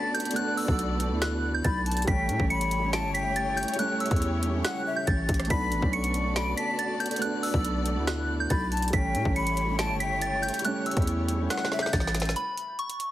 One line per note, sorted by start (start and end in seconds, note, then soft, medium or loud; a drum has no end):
0.00 0.33 A3 loud
0.00 0.36 B3 medium
0.00 2.04 B3 medium
0.00 2.09 C#4 medium
0.00 0.39 D4 loud
0.00 2.04 F#4 medium
0.00 2.04 A4 medium
0.00 2.04 D5 medium
0.00 0.32 A5 medium
0.00 0.11 A6 medium
0.14 0.32 G6 medium
0.14 closed hi-hat medium
0.20 closed hi-hat medium
0.25 closed hi-hat medium
0.31 0.56 A3 loud
0.31 closed hi-hat medium
0.36 0.58 B3 medium
0.36 0.59 D4 loud
0.36 0.53 F#6 loud
0.36 closed hi-hat medium
0.57 1.18 E6 medium
0.57 open hi-hat medium
0.65 1.13 B1 loud
0.65 0.88 A3 medium
0.65 0.90 B3 medium
0.65 kick medium
0.71 0.91 D4 medium
0.79 closed hi-hat medium
0.97 1.06 A3 medium
0.97 1.08 B3 medium
0.97 closed hi-hat medium
1.03 1.09 D4 medium
1.08 1.62 D2 loud
1.08 1.67 A3 medium
1.08 1.69 B3 medium
1.14 1.70 E4 medium
1.22 1.52 F#6 medium
1.22 snare loud
1.22 closed hi-hat medium
1.54 1.63 G6 medium
1.64 2.06 B1 loud
1.64 1.85 B5 loud
1.64 2.05 A6 medium
1.64 kick medium
1.64 closed hi-hat medium
1.86 2.06 A5 medium
1.86 closed hi-hat medium
1.91 closed hi-hat medium
1.97 closed hi-hat medium
2.02 2.28 G3 loud
2.02 closed hi-hat medium
2.07 2.30 A1 loud
2.07 2.29 A3 loud
2.07 5.47 A3 medium
2.07 2.31 C#4 loud
2.07 5.47 E4 medium
2.07 5.47 G4 medium
2.07 5.47 C#5 loud
2.07 2.48 G5 medium
2.07 2.48 B6 medium
2.07 kick loud
2.07 closed hi-hat medium
2.29 2.39 A2 medium
2.29 closed hi-hat medium
2.37 3.05 A1 loud
2.37 2.67 G3 medium
2.37 2.69 A3 medium
2.37 kick medium
2.43 2.70 C#4 medium
2.50 2.91 B5 medium
2.50 2.90 C#7 medium
2.50 closed hi-hat soft
2.61 closed hi-hat medium
2.71 closed hi-hat medium
2.80 3.39 G3 medium
2.80 3.40 A3 medium
2.86 3.42 C#4 medium
2.93 3.13 A5 loud
2.93 3.11 D7 medium
2.93 snare loud
2.93 closed hi-hat medium
3.04 3.65 G1 loud
3.14 3.75 G5 medium
3.14 3.32 B6 medium
3.14 closed hi-hat medium
3.36 3.53 A6 medium
3.36 closed hi-hat medium
3.57 3.74 G6 medium
3.57 closed hi-hat medium
3.63 closed hi-hat medium
3.68 closed hi-hat medium
3.74 3.99 G3 medium
3.74 closed hi-hat medium
3.79 4.01 A3 medium
3.79 4.02 C#4 loud
3.79 3.96 F#6 loud
3.79 closed hi-hat medium
4.00 4.61 E6 medium
4.00 closed hi-hat medium
4.06 4.31 G3 medium
4.06 closed hi-hat medium
4.11 4.62 E2 loud
4.11 4.33 A3 medium
4.11 4.34 E4 medium
4.11 kick medium
4.11 closed hi-hat medium
4.16 closed hi-hat medium
4.22 closed hi-hat medium
4.40 4.49 G3 medium
4.40 4.50 A3 medium
4.40 closed hi-hat medium
4.46 4.52 C#4 medium
4.51 5.10 G3 medium
4.51 5.12 A3 medium
4.57 5.13 C#4 medium
4.64 4.85 F#5 medium
4.64 4.95 F#6 medium
4.64 snare loud
4.64 closed hi-hat medium
4.86 5.06 E5 medium
4.96 5.05 G6 medium
5.07 5.28 A1 loud
5.07 5.47 A6 medium
5.07 kick medium
5.07 closed hi-hat medium
5.29 5.49 A1 loud
5.29 kick loud
5.29 closed hi-hat medium
5.34 closed hi-hat medium
5.40 cross-stick medium
5.40 closed hi-hat medium
5.45 5.70 A3 loud
5.45 closed hi-hat soft
5.50 5.73 B1 loud
5.50 5.72 B3 medium
5.50 8.90 B3 medium
5.50 5.73 D4 loud
5.50 8.90 F#4 medium
5.50 8.90 A4 medium
5.50 8.90 D5 loud
5.50 5.91 B5 loud
5.50 5.91 B6 medium
5.50 kick loud
5.50 closed hi-hat medium
5.72 5.82 A1 loud
5.72 closed hi-hat medium
5.79 6.54 B1 loud
5.79 6.10 A3 medium
5.79 6.11 B3 medium
5.79 kick medium
5.85 6.13 C#4 medium
5.93 6.33 C#6 medium
5.93 6.33 C#7 medium
5.93 closed hi-hat soft
6.04 closed hi-hat medium
6.14 closed hi-hat medium
6.22 6.82 A3 medium
6.22 6.83 B3 medium
6.28 6.85 D4 medium
6.36 6.56 B5 medium
6.36 6.53 D7 medium
6.36 snare loud
6.36 closed hi-hat medium
6.57 7.18 A5 medium
6.57 6.75 B6 medium
6.57 closed hi-hat medium
6.79 6.96 A6 medium
6.79 closed hi-hat medium
7.00 7.18 G6 medium
7.00 closed hi-hat medium
7.06 closed hi-hat medium
7.11 closed hi-hat medium
7.16 7.42 A3 loud
7.16 closed hi-hat medium
7.22 7.43 B3 medium
7.22 7.45 D4 loud
7.22 7.39 F#6 loud
7.22 closed hi-hat medium
7.43 8.03 E6 medium
7.43 open hi-hat medium
7.51 7.98 B1 loud
7.51 7.74 A3 medium
7.51 7.76 B3 medium
7.51 kick medium
7.57 7.77 D4 medium
7.65 closed hi-hat medium
7.83 7.92 A3 medium
7.83 7.93 B3 medium
7.83 closed hi-hat medium
7.89 7.95 D4 medium
7.94 8.48 D2 loud
7.94 8.53 A3 medium
7.94 8.55 B3 medium
8.00 8.56 E4 medium
8.07 8.38 F#6 medium
8.07 snare loud
8.07 closed hi-hat medium
8.40 8.49 G6 medium
8.50 8.91 B1 loud
8.50 8.71 B5 medium
8.50 8.90 A6 medium
8.50 kick medium
8.50 closed hi-hat medium
8.72 8.92 A5 medium
8.72 closed hi-hat medium
8.77 closed hi-hat medium
8.82 closed hi-hat medium
8.88 9.13 G3 loud
8.88 closed hi-hat medium
8.93 9.16 A1 loud
8.93 9.15 A3 medium
8.93 12.33 A3 medium
8.93 9.16 C#4 loud
8.93 12.33 E4 medium
8.93 12.33 G4 medium
8.93 12.33 C#5 medium
8.93 9.34 G5 medium
8.93 9.34 B6 loud
8.93 kick loud
8.93 closed hi-hat medium
9.15 9.25 A2 loud
9.15 closed hi-hat medium
9.23 9.91 A1 loud
9.23 9.53 G3 medium
9.23 9.54 A3 medium
9.23 kick medium
9.28 9.56 C#4 loud
9.36 9.76 B5 medium
9.36 9.76 C#7 medium
9.36 closed hi-hat soft
9.47 closed hi-hat medium
9.57 closed hi-hat medium
9.65 10.25 G3 medium
9.65 10.26 A3 medium
9.71 10.28 C#4 medium
9.79 9.99 A5 loud
9.79 9.96 D7 medium
9.79 snare loud
9.79 closed hi-hat medium
9.90 10.51 G1 loud
10.00 10.61 G5 medium
10.00 10.18 B6 medium
10.00 closed hi-hat medium
10.21 10.39 A6 medium
10.21 closed hi-hat medium
10.42 10.60 G6 medium
10.42 closed hi-hat medium
10.48 closed hi-hat medium
10.54 closed hi-hat medium
10.59 10.85 G3 medium
10.59 closed hi-hat medium
10.65 10.86 A3 medium
10.65 10.88 C#4 loud
10.65 10.82 F#6 loud
10.65 closed hi-hat medium
10.86 11.47 E6 medium
10.86 closed hi-hat medium
10.91 11.17 G3 medium
10.91 closed hi-hat medium
10.97 11.48 E2 loud
10.97 11.18 A3 medium
10.97 11.20 E4 medium
10.97 kick medium
10.97 closed hi-hat medium
11.02 closed hi-hat medium
11.07 closed hi-hat medium
11.26 11.35 G3 medium
11.26 11.36 A3 medium
11.26 closed hi-hat medium
11.32 11.38 C#4 medium
11.37 11.96 G3 medium
11.37 11.98 A3 medium
11.43 11.99 C#4 medium
11.50 11.71 F#5 medium
11.50 11.80 F#6 medium
11.50 snare medium
11.50 closed hi-hat medium
11.58 snare medium
11.65 snare medium
11.72 11.92 E5 medium
11.72 snare medium
11.79 11.91 G6 medium
11.79 snare medium
11.86 snare medium
11.93 12.34 A1 loud
11.93 12.33 A6 medium
11.93 kick medium
11.93 snare medium
11.93 closed hi-hat medium
12.00 snare medium
12.07 snare loud
12.15 snare medium
12.15 closed hi-hat medium
12.20 snare loud
12.20 closed hi-hat medium
12.25 snare medium
12.25 closed hi-hat medium
12.31 closed hi-hat soft
12.36 12.76 B5 medium
12.36 closed hi-hat medium
12.57 closed hi-hat medium
12.79 13.12 C#6 medium
12.79 closed hi-hat soft
12.90 closed hi-hat medium
13.00 closed hi-hat medium